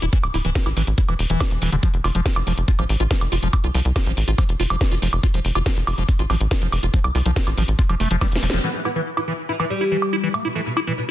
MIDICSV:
0, 0, Header, 1, 5, 480
1, 0, Start_track
1, 0, Tempo, 425532
1, 144, Time_signature, 4, 2, 24, 8
1, 12531, End_track
2, 0, Start_track
2, 0, Title_t, "Acid bass"
2, 0, Program_c, 0, 38
2, 25, Note_on_c, 0, 64, 79
2, 63, Note_off_c, 0, 64, 0
2, 144, Note_on_c, 0, 52, 84
2, 208, Note_off_c, 0, 52, 0
2, 384, Note_on_c, 0, 64, 82
2, 423, Note_off_c, 0, 64, 0
2, 504, Note_on_c, 0, 52, 75
2, 568, Note_off_c, 0, 52, 0
2, 744, Note_on_c, 0, 64, 81
2, 782, Note_off_c, 0, 64, 0
2, 864, Note_on_c, 0, 52, 79
2, 928, Note_off_c, 0, 52, 0
2, 1105, Note_on_c, 0, 64, 83
2, 1143, Note_off_c, 0, 64, 0
2, 1225, Note_on_c, 0, 52, 76
2, 1288, Note_off_c, 0, 52, 0
2, 1465, Note_on_c, 0, 52, 78
2, 1585, Note_on_c, 0, 64, 83
2, 1602, Note_off_c, 0, 52, 0
2, 1623, Note_off_c, 0, 64, 0
2, 1825, Note_on_c, 0, 52, 76
2, 1920, Note_off_c, 0, 52, 0
2, 1945, Note_on_c, 0, 50, 101
2, 1983, Note_off_c, 0, 50, 0
2, 2065, Note_on_c, 0, 53, 81
2, 2128, Note_off_c, 0, 53, 0
2, 2304, Note_on_c, 0, 65, 79
2, 2343, Note_off_c, 0, 65, 0
2, 2425, Note_on_c, 0, 53, 77
2, 2488, Note_off_c, 0, 53, 0
2, 2665, Note_on_c, 0, 65, 81
2, 2703, Note_off_c, 0, 65, 0
2, 2785, Note_on_c, 0, 53, 76
2, 2848, Note_off_c, 0, 53, 0
2, 3025, Note_on_c, 0, 65, 81
2, 3063, Note_off_c, 0, 65, 0
2, 3145, Note_on_c, 0, 53, 77
2, 3208, Note_off_c, 0, 53, 0
2, 3385, Note_on_c, 0, 65, 79
2, 3423, Note_off_c, 0, 65, 0
2, 3505, Note_on_c, 0, 53, 82
2, 3568, Note_off_c, 0, 53, 0
2, 3745, Note_on_c, 0, 65, 76
2, 3783, Note_off_c, 0, 65, 0
2, 3865, Note_on_c, 0, 53, 78
2, 3928, Note_off_c, 0, 53, 0
2, 4105, Note_on_c, 0, 65, 75
2, 4143, Note_off_c, 0, 65, 0
2, 4225, Note_on_c, 0, 53, 79
2, 4288, Note_off_c, 0, 53, 0
2, 4465, Note_on_c, 0, 65, 87
2, 4503, Note_off_c, 0, 65, 0
2, 4585, Note_on_c, 0, 53, 80
2, 4648, Note_off_c, 0, 53, 0
2, 4825, Note_on_c, 0, 65, 81
2, 4863, Note_off_c, 0, 65, 0
2, 4945, Note_on_c, 0, 53, 81
2, 5008, Note_off_c, 0, 53, 0
2, 5185, Note_on_c, 0, 65, 76
2, 5223, Note_off_c, 0, 65, 0
2, 5305, Note_on_c, 0, 53, 79
2, 5368, Note_off_c, 0, 53, 0
2, 5545, Note_on_c, 0, 65, 75
2, 5583, Note_off_c, 0, 65, 0
2, 5665, Note_on_c, 0, 53, 78
2, 5728, Note_off_c, 0, 53, 0
2, 5905, Note_on_c, 0, 65, 82
2, 5943, Note_off_c, 0, 65, 0
2, 6025, Note_on_c, 0, 53, 76
2, 6088, Note_off_c, 0, 53, 0
2, 6265, Note_on_c, 0, 65, 78
2, 6303, Note_off_c, 0, 65, 0
2, 6385, Note_on_c, 0, 53, 89
2, 6448, Note_off_c, 0, 53, 0
2, 6625, Note_on_c, 0, 65, 76
2, 6663, Note_off_c, 0, 65, 0
2, 6745, Note_on_c, 0, 53, 78
2, 6808, Note_off_c, 0, 53, 0
2, 6985, Note_on_c, 0, 65, 76
2, 7023, Note_off_c, 0, 65, 0
2, 7105, Note_on_c, 0, 53, 80
2, 7168, Note_off_c, 0, 53, 0
2, 7345, Note_on_c, 0, 65, 88
2, 7383, Note_off_c, 0, 65, 0
2, 7465, Note_on_c, 0, 53, 79
2, 7528, Note_off_c, 0, 53, 0
2, 7705, Note_on_c, 0, 65, 81
2, 7743, Note_off_c, 0, 65, 0
2, 7825, Note_on_c, 0, 53, 85
2, 7888, Note_off_c, 0, 53, 0
2, 8065, Note_on_c, 0, 65, 78
2, 8103, Note_off_c, 0, 65, 0
2, 8185, Note_on_c, 0, 53, 77
2, 8248, Note_off_c, 0, 53, 0
2, 8425, Note_on_c, 0, 65, 82
2, 8463, Note_off_c, 0, 65, 0
2, 8545, Note_on_c, 0, 53, 74
2, 8608, Note_off_c, 0, 53, 0
2, 8785, Note_on_c, 0, 65, 86
2, 8823, Note_off_c, 0, 65, 0
2, 8904, Note_on_c, 0, 53, 77
2, 8968, Note_off_c, 0, 53, 0
2, 9024, Note_on_c, 0, 57, 77
2, 9119, Note_off_c, 0, 57, 0
2, 9145, Note_on_c, 0, 53, 75
2, 9208, Note_off_c, 0, 53, 0
2, 9264, Note_on_c, 0, 55, 99
2, 9328, Note_off_c, 0, 55, 0
2, 9504, Note_on_c, 0, 53, 80
2, 9542, Note_off_c, 0, 53, 0
2, 9624, Note_on_c, 0, 53, 77
2, 9688, Note_off_c, 0, 53, 0
2, 9744, Note_on_c, 0, 52, 82
2, 9808, Note_off_c, 0, 52, 0
2, 9984, Note_on_c, 0, 64, 80
2, 10022, Note_off_c, 0, 64, 0
2, 10104, Note_on_c, 0, 52, 74
2, 10168, Note_off_c, 0, 52, 0
2, 10345, Note_on_c, 0, 64, 79
2, 10383, Note_off_c, 0, 64, 0
2, 10464, Note_on_c, 0, 52, 77
2, 10528, Note_off_c, 0, 52, 0
2, 10705, Note_on_c, 0, 64, 77
2, 10743, Note_off_c, 0, 64, 0
2, 10824, Note_on_c, 0, 52, 77
2, 10888, Note_off_c, 0, 52, 0
2, 11065, Note_on_c, 0, 64, 75
2, 11103, Note_off_c, 0, 64, 0
2, 11185, Note_on_c, 0, 52, 82
2, 11248, Note_off_c, 0, 52, 0
2, 11425, Note_on_c, 0, 64, 75
2, 11463, Note_off_c, 0, 64, 0
2, 11545, Note_on_c, 0, 52, 76
2, 11608, Note_off_c, 0, 52, 0
2, 11785, Note_on_c, 0, 64, 76
2, 11823, Note_off_c, 0, 64, 0
2, 11905, Note_on_c, 0, 52, 79
2, 11968, Note_off_c, 0, 52, 0
2, 12145, Note_on_c, 0, 64, 85
2, 12183, Note_off_c, 0, 64, 0
2, 12265, Note_on_c, 0, 52, 77
2, 12328, Note_off_c, 0, 52, 0
2, 12531, End_track
3, 0, Start_track
3, 0, Title_t, "Oud"
3, 0, Program_c, 1, 24
3, 9745, Note_on_c, 1, 59, 95
3, 9801, Note_off_c, 1, 59, 0
3, 9864, Note_on_c, 1, 52, 59
3, 9921, Note_off_c, 1, 52, 0
3, 9984, Note_on_c, 1, 59, 87
3, 10041, Note_off_c, 1, 59, 0
3, 10104, Note_on_c, 1, 52, 62
3, 10161, Note_off_c, 1, 52, 0
3, 10344, Note_on_c, 1, 52, 61
3, 10401, Note_off_c, 1, 52, 0
3, 10464, Note_on_c, 1, 52, 60
3, 10521, Note_off_c, 1, 52, 0
3, 10704, Note_on_c, 1, 52, 62
3, 10761, Note_off_c, 1, 52, 0
3, 10825, Note_on_c, 1, 52, 65
3, 10881, Note_off_c, 1, 52, 0
3, 10945, Note_on_c, 1, 55, 90
3, 11569, Note_off_c, 1, 55, 0
3, 11665, Note_on_c, 1, 57, 95
3, 11721, Note_off_c, 1, 57, 0
3, 11785, Note_on_c, 1, 47, 62
3, 11841, Note_off_c, 1, 47, 0
3, 11905, Note_on_c, 1, 57, 86
3, 11961, Note_off_c, 1, 57, 0
3, 12025, Note_on_c, 1, 47, 61
3, 12081, Note_off_c, 1, 47, 0
3, 12265, Note_on_c, 1, 47, 64
3, 12321, Note_off_c, 1, 47, 0
3, 12385, Note_on_c, 1, 47, 63
3, 12441, Note_off_c, 1, 47, 0
3, 12531, End_track
4, 0, Start_track
4, 0, Title_t, "Analog synth bass"
4, 0, Program_c, 2, 38
4, 24, Note_on_c, 2, 28, 92
4, 103, Note_off_c, 2, 28, 0
4, 264, Note_on_c, 2, 26, 86
4, 343, Note_off_c, 2, 26, 0
4, 385, Note_on_c, 2, 26, 103
4, 463, Note_off_c, 2, 26, 0
4, 505, Note_on_c, 2, 26, 92
4, 583, Note_off_c, 2, 26, 0
4, 744, Note_on_c, 2, 33, 89
4, 823, Note_off_c, 2, 33, 0
4, 864, Note_on_c, 2, 33, 96
4, 943, Note_off_c, 2, 33, 0
4, 985, Note_on_c, 2, 33, 91
4, 1063, Note_off_c, 2, 33, 0
4, 1225, Note_on_c, 2, 28, 92
4, 1303, Note_off_c, 2, 28, 0
4, 1345, Note_on_c, 2, 28, 100
4, 1423, Note_off_c, 2, 28, 0
4, 1464, Note_on_c, 2, 28, 99
4, 1543, Note_off_c, 2, 28, 0
4, 1705, Note_on_c, 2, 28, 89
4, 1783, Note_off_c, 2, 28, 0
4, 1825, Note_on_c, 2, 28, 102
4, 1903, Note_off_c, 2, 28, 0
4, 1945, Note_on_c, 2, 28, 92
4, 2023, Note_off_c, 2, 28, 0
4, 2185, Note_on_c, 2, 29, 88
4, 2263, Note_off_c, 2, 29, 0
4, 2305, Note_on_c, 2, 29, 102
4, 2383, Note_off_c, 2, 29, 0
4, 2425, Note_on_c, 2, 29, 90
4, 2503, Note_off_c, 2, 29, 0
4, 2665, Note_on_c, 2, 29, 90
4, 2743, Note_off_c, 2, 29, 0
4, 2785, Note_on_c, 2, 29, 102
4, 2863, Note_off_c, 2, 29, 0
4, 2905, Note_on_c, 2, 29, 92
4, 2983, Note_off_c, 2, 29, 0
4, 3145, Note_on_c, 2, 33, 89
4, 3223, Note_off_c, 2, 33, 0
4, 3264, Note_on_c, 2, 33, 96
4, 3343, Note_off_c, 2, 33, 0
4, 3384, Note_on_c, 2, 33, 94
4, 3463, Note_off_c, 2, 33, 0
4, 3624, Note_on_c, 2, 29, 88
4, 3703, Note_off_c, 2, 29, 0
4, 3744, Note_on_c, 2, 29, 103
4, 3823, Note_off_c, 2, 29, 0
4, 3865, Note_on_c, 2, 29, 92
4, 3943, Note_off_c, 2, 29, 0
4, 4105, Note_on_c, 2, 36, 90
4, 4183, Note_off_c, 2, 36, 0
4, 4225, Note_on_c, 2, 36, 101
4, 4303, Note_off_c, 2, 36, 0
4, 4345, Note_on_c, 2, 36, 89
4, 4423, Note_off_c, 2, 36, 0
4, 4585, Note_on_c, 2, 33, 89
4, 4663, Note_off_c, 2, 33, 0
4, 4705, Note_on_c, 2, 33, 94
4, 4783, Note_off_c, 2, 33, 0
4, 4825, Note_on_c, 2, 33, 95
4, 4903, Note_off_c, 2, 33, 0
4, 5065, Note_on_c, 2, 29, 89
4, 5143, Note_off_c, 2, 29, 0
4, 5185, Note_on_c, 2, 29, 100
4, 5263, Note_off_c, 2, 29, 0
4, 5305, Note_on_c, 2, 29, 97
4, 5383, Note_off_c, 2, 29, 0
4, 5545, Note_on_c, 2, 29, 86
4, 5623, Note_off_c, 2, 29, 0
4, 5665, Note_on_c, 2, 29, 106
4, 5743, Note_off_c, 2, 29, 0
4, 5785, Note_on_c, 2, 29, 97
4, 5863, Note_off_c, 2, 29, 0
4, 6025, Note_on_c, 2, 29, 88
4, 6103, Note_off_c, 2, 29, 0
4, 6145, Note_on_c, 2, 29, 100
4, 6223, Note_off_c, 2, 29, 0
4, 6265, Note_on_c, 2, 29, 91
4, 6343, Note_off_c, 2, 29, 0
4, 6505, Note_on_c, 2, 29, 92
4, 6583, Note_off_c, 2, 29, 0
4, 6625, Note_on_c, 2, 29, 100
4, 6703, Note_off_c, 2, 29, 0
4, 6745, Note_on_c, 2, 29, 89
4, 6823, Note_off_c, 2, 29, 0
4, 6985, Note_on_c, 2, 33, 91
4, 7063, Note_off_c, 2, 33, 0
4, 7105, Note_on_c, 2, 33, 100
4, 7183, Note_off_c, 2, 33, 0
4, 7225, Note_on_c, 2, 33, 96
4, 7303, Note_off_c, 2, 33, 0
4, 7464, Note_on_c, 2, 29, 90
4, 7543, Note_off_c, 2, 29, 0
4, 7584, Note_on_c, 2, 29, 99
4, 7663, Note_off_c, 2, 29, 0
4, 7704, Note_on_c, 2, 29, 97
4, 7783, Note_off_c, 2, 29, 0
4, 7944, Note_on_c, 2, 36, 89
4, 8023, Note_off_c, 2, 36, 0
4, 8064, Note_on_c, 2, 36, 105
4, 8143, Note_off_c, 2, 36, 0
4, 8185, Note_on_c, 2, 36, 91
4, 8263, Note_off_c, 2, 36, 0
4, 8425, Note_on_c, 2, 33, 90
4, 8503, Note_off_c, 2, 33, 0
4, 8545, Note_on_c, 2, 33, 101
4, 8623, Note_off_c, 2, 33, 0
4, 8665, Note_on_c, 2, 33, 92
4, 8743, Note_off_c, 2, 33, 0
4, 8905, Note_on_c, 2, 29, 89
4, 8983, Note_off_c, 2, 29, 0
4, 9024, Note_on_c, 2, 29, 99
4, 9103, Note_off_c, 2, 29, 0
4, 9144, Note_on_c, 2, 29, 99
4, 9223, Note_off_c, 2, 29, 0
4, 9385, Note_on_c, 2, 29, 86
4, 9463, Note_off_c, 2, 29, 0
4, 9505, Note_on_c, 2, 29, 105
4, 9583, Note_off_c, 2, 29, 0
4, 9624, Note_on_c, 2, 29, 96
4, 9703, Note_off_c, 2, 29, 0
4, 12531, End_track
5, 0, Start_track
5, 0, Title_t, "Drums"
5, 24, Note_on_c, 9, 42, 49
5, 137, Note_off_c, 9, 42, 0
5, 144, Note_on_c, 9, 36, 121
5, 145, Note_on_c, 9, 42, 75
5, 257, Note_off_c, 9, 36, 0
5, 257, Note_off_c, 9, 42, 0
5, 265, Note_on_c, 9, 42, 49
5, 265, Note_on_c, 9, 76, 82
5, 377, Note_off_c, 9, 42, 0
5, 377, Note_off_c, 9, 76, 0
5, 385, Note_on_c, 9, 46, 110
5, 497, Note_off_c, 9, 46, 0
5, 505, Note_on_c, 9, 42, 51
5, 617, Note_off_c, 9, 42, 0
5, 624, Note_on_c, 9, 36, 127
5, 624, Note_on_c, 9, 38, 114
5, 624, Note_on_c, 9, 42, 75
5, 737, Note_off_c, 9, 36, 0
5, 737, Note_off_c, 9, 38, 0
5, 737, Note_off_c, 9, 42, 0
5, 745, Note_on_c, 9, 42, 49
5, 745, Note_on_c, 9, 76, 41
5, 857, Note_off_c, 9, 42, 0
5, 857, Note_off_c, 9, 76, 0
5, 865, Note_on_c, 9, 46, 116
5, 977, Note_off_c, 9, 46, 0
5, 985, Note_on_c, 9, 42, 50
5, 1097, Note_off_c, 9, 42, 0
5, 1104, Note_on_c, 9, 42, 77
5, 1105, Note_on_c, 9, 36, 117
5, 1217, Note_off_c, 9, 36, 0
5, 1217, Note_off_c, 9, 42, 0
5, 1224, Note_on_c, 9, 42, 53
5, 1224, Note_on_c, 9, 76, 42
5, 1337, Note_off_c, 9, 42, 0
5, 1337, Note_off_c, 9, 76, 0
5, 1344, Note_on_c, 9, 46, 110
5, 1457, Note_off_c, 9, 46, 0
5, 1464, Note_on_c, 9, 42, 50
5, 1577, Note_off_c, 9, 42, 0
5, 1584, Note_on_c, 9, 38, 120
5, 1584, Note_on_c, 9, 42, 76
5, 1584, Note_on_c, 9, 76, 82
5, 1585, Note_on_c, 9, 36, 121
5, 1697, Note_off_c, 9, 36, 0
5, 1697, Note_off_c, 9, 38, 0
5, 1697, Note_off_c, 9, 42, 0
5, 1697, Note_off_c, 9, 76, 0
5, 1705, Note_on_c, 9, 42, 51
5, 1817, Note_off_c, 9, 42, 0
5, 1825, Note_on_c, 9, 46, 117
5, 1937, Note_off_c, 9, 46, 0
5, 1944, Note_on_c, 9, 42, 48
5, 2057, Note_off_c, 9, 42, 0
5, 2065, Note_on_c, 9, 36, 117
5, 2065, Note_on_c, 9, 42, 72
5, 2177, Note_off_c, 9, 36, 0
5, 2177, Note_off_c, 9, 42, 0
5, 2185, Note_on_c, 9, 42, 50
5, 2298, Note_off_c, 9, 42, 0
5, 2305, Note_on_c, 9, 46, 104
5, 2305, Note_on_c, 9, 76, 42
5, 2417, Note_off_c, 9, 46, 0
5, 2417, Note_off_c, 9, 76, 0
5, 2425, Note_on_c, 9, 42, 50
5, 2537, Note_off_c, 9, 42, 0
5, 2545, Note_on_c, 9, 36, 124
5, 2545, Note_on_c, 9, 38, 116
5, 2545, Note_on_c, 9, 42, 74
5, 2657, Note_off_c, 9, 36, 0
5, 2658, Note_off_c, 9, 38, 0
5, 2658, Note_off_c, 9, 42, 0
5, 2665, Note_on_c, 9, 42, 51
5, 2665, Note_on_c, 9, 76, 85
5, 2778, Note_off_c, 9, 42, 0
5, 2778, Note_off_c, 9, 76, 0
5, 2785, Note_on_c, 9, 46, 106
5, 2897, Note_off_c, 9, 46, 0
5, 2905, Note_on_c, 9, 42, 51
5, 3017, Note_off_c, 9, 42, 0
5, 3025, Note_on_c, 9, 36, 117
5, 3025, Note_on_c, 9, 42, 80
5, 3138, Note_off_c, 9, 36, 0
5, 3138, Note_off_c, 9, 42, 0
5, 3145, Note_on_c, 9, 42, 49
5, 3145, Note_on_c, 9, 76, 41
5, 3257, Note_off_c, 9, 42, 0
5, 3257, Note_off_c, 9, 76, 0
5, 3265, Note_on_c, 9, 46, 103
5, 3377, Note_off_c, 9, 46, 0
5, 3384, Note_on_c, 9, 42, 51
5, 3497, Note_off_c, 9, 42, 0
5, 3504, Note_on_c, 9, 38, 117
5, 3504, Note_on_c, 9, 42, 76
5, 3505, Note_on_c, 9, 36, 117
5, 3617, Note_off_c, 9, 36, 0
5, 3617, Note_off_c, 9, 38, 0
5, 3617, Note_off_c, 9, 42, 0
5, 3624, Note_on_c, 9, 42, 52
5, 3624, Note_on_c, 9, 76, 43
5, 3737, Note_off_c, 9, 42, 0
5, 3737, Note_off_c, 9, 76, 0
5, 3745, Note_on_c, 9, 46, 110
5, 3857, Note_off_c, 9, 46, 0
5, 3865, Note_on_c, 9, 42, 51
5, 3977, Note_off_c, 9, 42, 0
5, 3985, Note_on_c, 9, 36, 119
5, 3985, Note_on_c, 9, 42, 78
5, 3985, Note_on_c, 9, 76, 80
5, 4097, Note_off_c, 9, 36, 0
5, 4098, Note_off_c, 9, 42, 0
5, 4098, Note_off_c, 9, 76, 0
5, 4105, Note_on_c, 9, 42, 53
5, 4217, Note_off_c, 9, 42, 0
5, 4225, Note_on_c, 9, 46, 102
5, 4337, Note_off_c, 9, 46, 0
5, 4345, Note_on_c, 9, 42, 51
5, 4458, Note_off_c, 9, 42, 0
5, 4465, Note_on_c, 9, 36, 116
5, 4465, Note_on_c, 9, 38, 113
5, 4465, Note_on_c, 9, 42, 80
5, 4465, Note_on_c, 9, 76, 43
5, 4577, Note_off_c, 9, 36, 0
5, 4578, Note_off_c, 9, 38, 0
5, 4578, Note_off_c, 9, 42, 0
5, 4578, Note_off_c, 9, 76, 0
5, 4585, Note_on_c, 9, 42, 52
5, 4698, Note_off_c, 9, 42, 0
5, 4705, Note_on_c, 9, 46, 101
5, 4818, Note_off_c, 9, 46, 0
5, 4825, Note_on_c, 9, 42, 50
5, 4938, Note_off_c, 9, 42, 0
5, 4945, Note_on_c, 9, 36, 117
5, 4945, Note_on_c, 9, 42, 80
5, 4945, Note_on_c, 9, 76, 45
5, 5057, Note_off_c, 9, 36, 0
5, 5058, Note_off_c, 9, 42, 0
5, 5058, Note_off_c, 9, 76, 0
5, 5065, Note_on_c, 9, 42, 52
5, 5178, Note_off_c, 9, 42, 0
5, 5185, Note_on_c, 9, 46, 101
5, 5298, Note_off_c, 9, 46, 0
5, 5305, Note_on_c, 9, 42, 53
5, 5305, Note_on_c, 9, 76, 86
5, 5418, Note_off_c, 9, 42, 0
5, 5418, Note_off_c, 9, 76, 0
5, 5425, Note_on_c, 9, 36, 114
5, 5425, Note_on_c, 9, 38, 118
5, 5425, Note_on_c, 9, 42, 78
5, 5537, Note_off_c, 9, 36, 0
5, 5538, Note_off_c, 9, 38, 0
5, 5538, Note_off_c, 9, 42, 0
5, 5545, Note_on_c, 9, 42, 54
5, 5658, Note_off_c, 9, 42, 0
5, 5665, Note_on_c, 9, 46, 106
5, 5778, Note_off_c, 9, 46, 0
5, 5785, Note_on_c, 9, 42, 51
5, 5785, Note_on_c, 9, 76, 42
5, 5898, Note_off_c, 9, 42, 0
5, 5898, Note_off_c, 9, 76, 0
5, 5905, Note_on_c, 9, 36, 116
5, 5905, Note_on_c, 9, 42, 79
5, 6017, Note_off_c, 9, 36, 0
5, 6018, Note_off_c, 9, 42, 0
5, 6025, Note_on_c, 9, 42, 55
5, 6138, Note_off_c, 9, 42, 0
5, 6145, Note_on_c, 9, 46, 103
5, 6257, Note_off_c, 9, 46, 0
5, 6265, Note_on_c, 9, 42, 53
5, 6265, Note_on_c, 9, 76, 41
5, 6378, Note_off_c, 9, 42, 0
5, 6378, Note_off_c, 9, 76, 0
5, 6385, Note_on_c, 9, 36, 111
5, 6385, Note_on_c, 9, 38, 118
5, 6385, Note_on_c, 9, 42, 84
5, 6497, Note_off_c, 9, 36, 0
5, 6498, Note_off_c, 9, 38, 0
5, 6498, Note_off_c, 9, 42, 0
5, 6505, Note_on_c, 9, 42, 54
5, 6617, Note_off_c, 9, 42, 0
5, 6624, Note_on_c, 9, 46, 101
5, 6624, Note_on_c, 9, 76, 84
5, 6737, Note_off_c, 9, 46, 0
5, 6737, Note_off_c, 9, 76, 0
5, 6745, Note_on_c, 9, 42, 53
5, 6857, Note_off_c, 9, 42, 0
5, 6864, Note_on_c, 9, 42, 83
5, 6865, Note_on_c, 9, 36, 110
5, 6977, Note_off_c, 9, 36, 0
5, 6977, Note_off_c, 9, 42, 0
5, 6984, Note_on_c, 9, 42, 53
5, 7097, Note_off_c, 9, 42, 0
5, 7105, Note_on_c, 9, 46, 97
5, 7105, Note_on_c, 9, 76, 41
5, 7217, Note_off_c, 9, 46, 0
5, 7217, Note_off_c, 9, 76, 0
5, 7225, Note_on_c, 9, 42, 57
5, 7338, Note_off_c, 9, 42, 0
5, 7345, Note_on_c, 9, 36, 115
5, 7345, Note_on_c, 9, 38, 121
5, 7345, Note_on_c, 9, 42, 86
5, 7457, Note_off_c, 9, 36, 0
5, 7457, Note_off_c, 9, 38, 0
5, 7457, Note_off_c, 9, 42, 0
5, 7465, Note_on_c, 9, 42, 54
5, 7577, Note_off_c, 9, 42, 0
5, 7585, Note_on_c, 9, 46, 109
5, 7585, Note_on_c, 9, 76, 40
5, 7697, Note_off_c, 9, 46, 0
5, 7697, Note_off_c, 9, 76, 0
5, 7705, Note_on_c, 9, 42, 55
5, 7817, Note_off_c, 9, 42, 0
5, 7825, Note_on_c, 9, 36, 124
5, 7825, Note_on_c, 9, 42, 79
5, 7937, Note_off_c, 9, 36, 0
5, 7937, Note_off_c, 9, 42, 0
5, 7945, Note_on_c, 9, 42, 55
5, 7945, Note_on_c, 9, 76, 78
5, 8057, Note_off_c, 9, 42, 0
5, 8057, Note_off_c, 9, 76, 0
5, 8065, Note_on_c, 9, 46, 104
5, 8177, Note_off_c, 9, 46, 0
5, 8185, Note_on_c, 9, 42, 54
5, 8297, Note_off_c, 9, 42, 0
5, 8304, Note_on_c, 9, 36, 115
5, 8305, Note_on_c, 9, 38, 123
5, 8305, Note_on_c, 9, 42, 88
5, 8417, Note_off_c, 9, 36, 0
5, 8417, Note_off_c, 9, 38, 0
5, 8417, Note_off_c, 9, 42, 0
5, 8425, Note_on_c, 9, 42, 55
5, 8425, Note_on_c, 9, 76, 41
5, 8537, Note_off_c, 9, 42, 0
5, 8537, Note_off_c, 9, 76, 0
5, 8544, Note_on_c, 9, 46, 102
5, 8657, Note_off_c, 9, 46, 0
5, 8665, Note_on_c, 9, 42, 55
5, 8777, Note_off_c, 9, 42, 0
5, 8784, Note_on_c, 9, 36, 114
5, 8785, Note_on_c, 9, 42, 87
5, 8897, Note_off_c, 9, 36, 0
5, 8897, Note_off_c, 9, 42, 0
5, 8905, Note_on_c, 9, 42, 57
5, 8905, Note_on_c, 9, 76, 39
5, 9018, Note_off_c, 9, 42, 0
5, 9018, Note_off_c, 9, 76, 0
5, 9025, Note_on_c, 9, 46, 101
5, 9138, Note_off_c, 9, 46, 0
5, 9145, Note_on_c, 9, 42, 55
5, 9258, Note_off_c, 9, 42, 0
5, 9264, Note_on_c, 9, 36, 114
5, 9265, Note_on_c, 9, 38, 72
5, 9265, Note_on_c, 9, 42, 89
5, 9265, Note_on_c, 9, 76, 82
5, 9377, Note_off_c, 9, 36, 0
5, 9378, Note_off_c, 9, 38, 0
5, 9378, Note_off_c, 9, 42, 0
5, 9378, Note_off_c, 9, 76, 0
5, 9385, Note_on_c, 9, 42, 57
5, 9425, Note_on_c, 9, 38, 83
5, 9498, Note_off_c, 9, 42, 0
5, 9505, Note_on_c, 9, 46, 105
5, 9537, Note_off_c, 9, 38, 0
5, 9585, Note_on_c, 9, 38, 104
5, 9617, Note_off_c, 9, 46, 0
5, 9625, Note_on_c, 9, 42, 57
5, 9698, Note_off_c, 9, 38, 0
5, 9738, Note_off_c, 9, 42, 0
5, 9745, Note_on_c, 9, 49, 83
5, 9857, Note_off_c, 9, 49, 0
5, 9985, Note_on_c, 9, 76, 35
5, 10097, Note_off_c, 9, 76, 0
5, 10345, Note_on_c, 9, 76, 72
5, 10458, Note_off_c, 9, 76, 0
5, 10825, Note_on_c, 9, 76, 38
5, 10937, Note_off_c, 9, 76, 0
5, 11305, Note_on_c, 9, 76, 37
5, 11418, Note_off_c, 9, 76, 0
5, 11665, Note_on_c, 9, 76, 73
5, 11777, Note_off_c, 9, 76, 0
5, 12145, Note_on_c, 9, 76, 37
5, 12258, Note_off_c, 9, 76, 0
5, 12531, End_track
0, 0, End_of_file